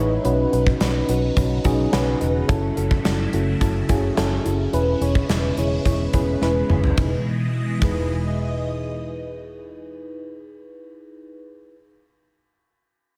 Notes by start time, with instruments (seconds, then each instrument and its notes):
Already playing: fingered electric bass A1, string machine G#3 B3 D#4 E4, fm electric piano D#4 E4 G#4 B4 C#5
0.24 fingered electric bass B1, string machine C#3 F#3 B3 D#4, fm electric piano C#4 D#4 F#4 B4, closed hi-hat
0.52 fingered electric bass B1, fm electric piano C#4 D#4 F#4 B4, closed hi-hat
0.67 kick
0.81 fingered electric bass B1, fm electric piano C#4 D#4 F#4 B4, snare, closed hi-hat
1.08 fingered electric bass B1, fm electric piano C#4 D#4 F#4 B4, closed hi-hat
1.36 fingered electric bass B1, fm electric piano C#4 D#4 F#4 B4, kick, closed hi-hat
1.64 fingered electric bass B1, fm electric piano C#4 D#4 F#4 G#4, kick, closed hi-hat
1.92 fingered electric bass B1, fm electric piano C#4 D#4 F#4 B4, snare, closed hi-hat
2.20 fingered electric bass E1, fm electric piano C#4 D#4 F#4 B4, closed hi-hat
2.48 fingered electric bass F#1, string machine F#3 A3 E4, fm electric piano C#4 E4 F#4 A4, kick, closed hi-hat
2.76 fingered electric bass F#1, fm electric piano C#4 E4 F#4 A4, closed hi-hat
2.91 kick
3.04 fingered electric bass F#1, fm electric piano C#4 E4 F#4 A4, snare, closed hi-hat
3.33 fingered electric bass F#1, fm electric piano C#4 E4 F#4 A4, closed hi-hat
3.61 fingered electric bass F#1, fm electric piano C#4 E4 F#4 A4, kick, closed hi-hat
3.89 fingered electric bass F#1, fm electric piano C#4 E4 F#4 G#4, kick, closed hi-hat
4.17 fingered electric bass F#1, fm electric piano C#4 E4 F#4 A4, snare, closed hi-hat
4.45 fingered electric bass F#1, fm electric piano C#4 E4 F#4 A4, closed hi-hat
4.73 fingered electric bass E1, string machine G#3 B3 E4, fm electric piano C#4 E4 G#4 B4, closed hi-hat
5.01 fingered electric bass E1, fm electric piano C#4 E4 G#4 C#5, closed hi-hat
5.15 kick
5.29 fingered electric bass E1, fm electric piano C#4 E4 G#4 B4, snare, closed hi-hat
5.57 fingered electric bass E1, fm electric piano C#4 E4 G#4 C#5, closed hi-hat
5.85 fingered electric bass E1, fm electric piano C#4 E4 G#4 C#5, kick, closed hi-hat
6.13 fingered electric bass E1, fm electric piano C#4 E4 G#4 B4, kick, closed hi-hat
6.41 fingered electric bass E1, fm electric piano C#4 E4 G#4 B4, snare
6.70 fingered electric bass F#1, fm electric piano C#4 E4 G#4 B4, mid tom
6.84 floor tom
6.96 fingered electric bass E1, string machine B2 E3 G#3 D#5, fm electric piano D#4 E4 G#4, kick, ride
7.01 fm electric piano B4
7.79 fingered electric bass E1, fm electric piano D#4 E4 G#4, kick, ride
7.84 fm electric piano B4